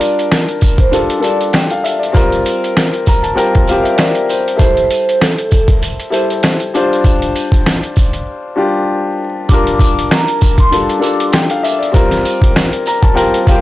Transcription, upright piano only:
0.00 0.55 G3 medium
0.00 0.55 D4 medium
0.00 0.56 F4 medium
0.00 0.56 A#4 medium
0.91 1.14 G3 medium
0.91 1.14 D4 medium
0.91 1.14 F4 medium
0.91 1.15 A4 medium
1.19 1.83 G3 medium
1.19 1.84 D4 medium
1.19 1.84 F4 medium
1.19 1.85 A4 medium
1.53 1.69 G5 medium
1.71 1.84 F5 medium
1.84 2.00 E5 medium
1.99 2.29 D5 medium
2.12 2.98 G3 medium
2.12 2.98 C4 medium
2.12 2.99 F4 medium
2.12 2.99 A#4 loud
3.08 3.23 A#5 medium
3.23 3.36 A5 medium
3.35 3.58 G3 medium
3.35 3.58 C4 medium
3.35 3.59 F4 medium
3.35 3.59 A#4 loud
3.35 3.65 G5 medium
3.68 4.31 G3 medium
3.68 4.31 C4 medium
3.68 4.31 F4 medium
3.68 4.32 G4 medium
3.68 3.84 F5 medium
3.84 3.97 E5 medium
3.96 4.26 D5 medium
4.30 4.57 C5 medium
4.56 5.42 G3 medium
4.56 5.42 E4 medium
4.56 5.43 A4 medium
4.56 5.43 C5 medium
6.10 6.72 G3 medium
6.10 6.73 E4 medium
6.10 6.74 A4 medium
6.10 6.74 C5 medium
6.74 7.72 G3 medium
6.74 7.73 D4 medium
6.74 7.73 F4 medium
6.74 7.74 C5 loud
8.56 9.19 G3 medium
8.56 9.20 D4 medium
8.56 9.20 F4 medium
8.56 9.20 G4 loud
9.51 10.34 G3 medium
9.51 10.35 D4 medium
9.51 10.35 F4 medium
9.51 10.36 A#4 medium
10.71 10.93 G3 medium
10.71 10.94 D4 medium
10.71 10.94 F4 medium
10.71 10.95 A4 medium
10.99 11.63 G3 medium
10.99 11.64 D4 medium
10.99 11.64 F4 medium
10.99 11.64 A4 medium
11.32 11.49 G5 medium
11.51 11.63 F5 medium
11.63 11.80 E5 medium
11.79 12.09 D5 medium
11.92 12.77 G3 medium
11.92 12.78 C4 medium
11.92 12.78 F4 medium
11.92 12.79 A#4 loud
12.88 13.03 A#5 medium
13.02 13.15 A5 medium
13.14 13.37 G3 medium
13.14 13.38 C4 medium
13.14 13.38 F4 medium
13.14 13.39 A#4 loud
13.14 13.44 G5 medium
13.48 13.61 G3 medium
13.48 13.61 C4 medium
13.48 13.61 F4 medium
13.48 13.61 G4 loud
13.48 13.61 F5 medium

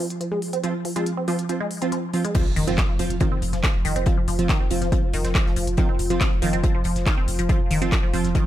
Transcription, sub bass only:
2.46 2.56 F1 medium
2.56 2.67 F1 loud
2.67 2.78 F1 medium
2.89 2.99 F1 medium
2.99 3.10 F1 loud
3.10 3.20 F1 medium
3.32 3.41 F1 medium
3.42 3.53 F1 medium
3.53 3.63 F1 medium
3.75 3.84 F1 medium
3.85 3.95 F1 loud
3.96 4.06 F1 medium
4.17 4.27 F1 medium
4.28 4.38 F1 loud
4.39 4.49 F1 medium
4.60 4.70 F1 medium
4.71 4.81 F1 loud
4.82 4.92 F1 medium
5.03 5.13 F1 medium
5.14 5.24 F1 loud
5.25 5.35 F1 medium
5.46 5.56 F1 medium
5.56 5.67 F1 medium
5.67 5.78 F1 medium
5.89 5.99 F1 medium
5.99 6.10 F1 loud
6.10 6.21 F1 medium
6.32 6.42 F1 medium
6.42 6.53 F1 loud
6.53 6.63 F1 medium
6.75 6.84 F1 medium
6.85 6.95 F1 loud
6.96 7.06 F1 medium
7.17 7.27 F1 medium
7.28 7.38 F1 loud
7.39 7.49 F1 medium
7.60 7.70 F1 medium
7.71 7.81 F1 loud
7.82 7.92 F1 medium
8.03 8.13 F1 medium
8.14 8.24 F1 loud
8.25 8.35 F1 medium

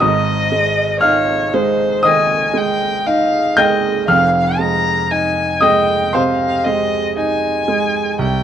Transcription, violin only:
0.01 0.99 D#5 medium
1.00 1.54 C#5 medium
1.53 2.07 C5 medium
2.06 2.59 G#5 medium
2.57 3.07 G5 medium
3.06 3.59 F5 medium
3.57 4.07 D#5 medium
4.08 4.60 F5 medium
4.59 5.12 A#5 medium
5.11 5.64 G#5 medium
5.62 6.16 G5 medium
6.14 6.66 F5 medium
6.65 7.18 D#5 medium
7.16 8.19 G#5 medium
8.21 8.43 G5 medium

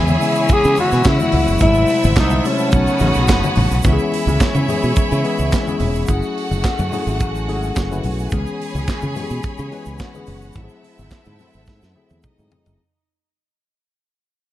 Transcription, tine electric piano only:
0.00 0.10 C#3 medium
0.00 0.10 E3 medium
0.00 0.11 G#3 medium
0.00 0.11 B3 medium
0.00 0.11 E4 medium
0.22 1.06 C#3 medium
0.22 1.06 E3 medium
0.22 1.06 G#3 medium
0.22 1.06 B3 medium
0.22 1.06 E4 medium
1.19 1.55 C#3 medium
1.19 1.56 E3 medium
1.19 1.56 G#3 medium
1.19 1.56 B3 medium
1.19 1.56 E4 medium
1.61 2.34 C3 medium
1.61 2.34 F#3 medium
1.61 2.34 G#3 medium
1.61 2.34 A3 medium
1.61 2.34 E4 medium
2.44 2.73 C3 medium
2.44 2.72 F#3 medium
2.44 2.73 G#3 medium
2.44 2.72 A3 medium
2.44 2.73 E4 medium
2.72 2.97 C#3 medium
2.72 2.97 F#3 medium
2.72 2.97 A3 medium
2.72 2.98 B3 medium
2.72 2.98 D#4 medium
3.00 3.73 C#3 medium
3.00 3.73 F#3 medium
3.00 3.74 A3 medium
3.00 3.74 B3 medium
3.00 3.74 D#4 medium
3.84 4.57 E3 medium
3.84 4.57 G#3 medium
3.84 4.58 B3 medium
3.84 4.58 C#4 medium
3.84 3.92 F#4 medium
3.93 4.61 G#4 loud
4.68 5.17 E3 medium
4.68 5.17 G#3 medium
4.68 5.17 B3 medium
4.68 5.17 C#4 medium
4.68 5.17 G#4 loud
5.24 5.61 E3 medium
5.24 5.61 G#3 medium
5.24 5.61 B3 medium
5.24 5.61 C#4 medium
5.24 5.61 G#4 loud
5.67 6.03 E3 medium
5.67 6.03 G#3 medium
5.67 6.03 B3 medium
5.67 6.03 C#4 medium
5.67 6.04 G#4 medium
6.09 6.81 F#3 medium
6.09 6.81 A3 medium
6.09 6.81 C#4 medium
6.09 6.81 E4 medium
6.09 6.82 G#4 loud
6.92 7.41 F#3 medium
6.92 7.41 A3 medium
6.92 7.41 C#4 medium
6.92 7.41 E4 medium
6.92 7.41 G#4 loud
7.48 7.84 F#3 medium
7.48 7.84 A3 medium
7.48 7.85 C#4 medium
7.48 7.85 E4 medium
7.48 7.85 G#4 loud
7.91 8.26 F#3 medium
7.91 8.26 A3 medium
7.91 8.27 C#4 medium
7.91 8.27 E4 medium
7.91 8.27 B4 loud
8.32 8.39 D#3 medium
8.32 9.05 G#3 medium
8.32 9.05 B3 medium
8.32 9.05 C#4 medium
8.32 9.05 G#4 medium
8.38 9.08 E3 medium
9.15 9.64 E3 loud
9.15 9.64 G#3 medium
9.15 9.64 B3 medium
9.15 9.64 C#4 medium
9.15 9.23 G4 medium
9.23 9.68 G#4 loud
9.72 10.08 E3 loud
9.72 10.08 G#3 medium
9.72 10.08 B3 medium
9.72 10.09 C#4 medium
9.72 10.09 B4 loud
10.14 10.50 E3 medium
10.14 10.50 G#3 medium
10.14 10.50 B3 medium
10.14 10.50 C#4 medium
10.14 10.51 G#4 loud
10.56 11.28 F#3 medium
10.56 11.28 A3 medium
10.56 11.29 C4 medium
10.56 11.29 E4 medium
10.56 10.63 F#4 medium
10.63 11.32 G#4 loud
11.39 11.88 F#3 medium
11.39 11.88 A3 medium
11.39 11.88 C4 medium
11.39 11.88 E4 medium
11.39 11.89 A4 loud
11.95 12.32 F#3 medium
11.95 12.32 A3 medium
11.95 12.32 C4 medium
11.95 12.32 E4 medium
11.95 12.32 G#4 loud
12.38 12.74 F#3 medium
12.38 12.74 A3 medium
12.38 12.74 C4 medium
12.38 12.74 E4 medium
12.38 12.75 G#4 medium

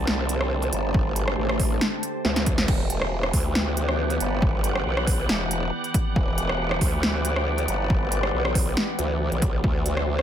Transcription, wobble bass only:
0.00 0.71 C2 medium
0.73 1.36 G1 loud
1.38 1.80 A1 loud
2.25 2.67 D2 loud
2.68 3.32 E1 medium
3.33 4.19 D2 loud
4.20 4.84 G1 loud
4.86 5.28 B1 loud
5.29 5.71 E1 loud
6.16 6.80 E1 loud
6.81 7.67 D2 medium
7.68 8.32 G1 loud
8.33 8.75 B1 loud
8.99 9.30 D2 loud
9.32 9.62 B1 medium
9.64 10.22 D2 medium

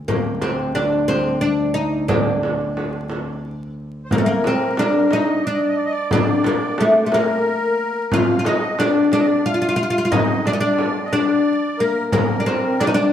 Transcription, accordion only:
4.04 4.11 C5 soft
4.11 5.14 A#4 medium
5.10 5.45 D#5 medium
5.43 5.52 D5 medium
5.52 5.60 D#5 medium
5.60 5.68 D5 soft
5.68 5.76 D#5 medium
5.75 5.84 D5 medium
5.85 5.93 D#5 medium
5.92 6.09 D5 medium
6.10 7.07 D5 medium
7.03 7.11 C5 medium
7.11 8.15 A#4 medium
8.12 8.46 F5 medium
8.44 8.79 D#5 medium
8.79 9.10 D5 medium
9.11 9.19 D5 medium
9.18 9.26 D#5 medium
9.24 9.45 D5 medium
9.45 10.14 F5 medium
10.12 10.47 D#5 medium
10.46 10.57 D5 medium
10.59 11.07 D5 medium
11.05 11.12 D#5 medium
11.12 11.81 D5 medium
11.78 12.10 A#4 medium
12.11 12.81 A#4 medium
12.79 12.91 D5 medium
12.93 13.13 D5 medium

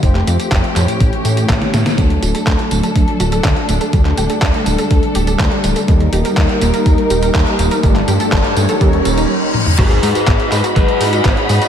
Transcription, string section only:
0.03 1.00 F3 medium
0.03 0.99 A3 medium
0.03 1.00 C4 medium
0.03 1.96 G4 medium
1.00 1.97 E3 medium
1.00 1.97 A3 medium
1.00 1.97 C#4 medium
1.98 3.91 F#3 medium
1.98 5.84 A3 medium
1.98 5.84 D4 medium
1.98 3.91 A4 medium
3.93 9.26 G3 medium
3.93 5.86 A4 medium
5.88 7.82 A#3 medium
5.88 7.82 D#4 medium
5.88 7.82 A#4 medium
7.83 8.80 A3 medium
7.83 8.80 D4 medium
7.83 8.80 A4 medium
8.81 9.29 C#4 medium
8.81 9.29 D#4 medium
8.81 9.29 A#4 medium
9.79 11.68 G#4 medium
9.79 11.68 D#5 medium
9.79 11.68 F#5 medium
9.79 11.68 B5 medium

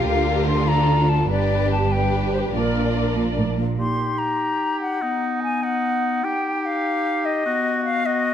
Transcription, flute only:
0.07 0.47 F5 medium
0.48 0.70 C6 medium
0.68 1.11 A#5 medium
1.09 1.30 A5 medium
1.31 1.71 D5 medium
1.72 1.93 A5 medium
1.92 2.33 G5 soft
2.34 2.40 C5 soft
2.54 3.15 A#4 soft
3.79 4.20 C6 medium
4.18 4.80 A#5 soft
4.81 5.41 F#5 soft
5.43 5.65 G#5 medium
5.63 6.26 F#5 medium
6.24 6.67 G5 medium
6.66 7.27 F5 medium
7.25 7.85 D#5 medium
7.85 8.07 F5 medium
8.06 8.34 D#5 medium

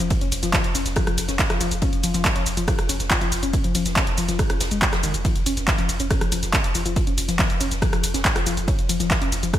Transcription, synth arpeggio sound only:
0.00 0.10 F3 loud
0.21 0.28 C#4 medium
0.43 0.50 F3 loud
0.54 0.64 F3 loud
0.75 0.82 C#4 medium
0.96 1.03 F3 loud
1.07 1.17 F3 loud
1.29 1.35 C#4 medium
1.50 1.57 F3 loud
1.61 1.71 F3 loud
1.82 1.89 C#4 medium
2.04 2.10 F3 loud
2.14 2.24 F3 loud
2.36 2.42 C#4 medium
2.57 2.64 F3 loud
2.68 2.78 F3 loud
2.89 2.96 C#4 medium
3.11 3.17 F3 loud
3.21 3.32 F3 loud
3.43 3.50 C#4 medium
3.64 3.71 F3 loud
3.75 3.85 F3 loud
3.96 4.03 C#4 medium
4.18 4.25 F3 loud
4.29 4.39 F3 loud
4.50 4.57 C#4 medium
4.71 4.78 G#3 medium
4.82 4.89 F#3 medium
4.93 5.00 F3 medium
5.03 5.14 D#3 medium
5.25 5.35 F3 loud
5.46 5.53 C#4 medium
5.68 5.75 F3 loud
5.78 5.89 F3 loud
6.00 6.07 C#4 medium
6.21 6.28 F3 loud
6.32 6.42 F3 loud
6.54 6.60 C#4 medium
6.75 6.82 F3 loud
6.86 6.96 F3 loud
7.07 7.14 C#4 medium
7.28 7.35 F3 loud
7.39 7.49 F3 loud
7.61 7.67 C#4 medium
7.82 7.89 F3 loud
7.93 8.03 F3 loud
8.14 8.21 C#4 medium
8.36 8.42 F3 loud
8.46 8.57 F3 loud
8.68 8.75 C#4 medium
8.89 8.96 F3 loud
9.00 9.10 F3 loud
9.21 9.28 C#4 medium
9.43 9.50 F3 loud
9.53 9.59 F3 loud

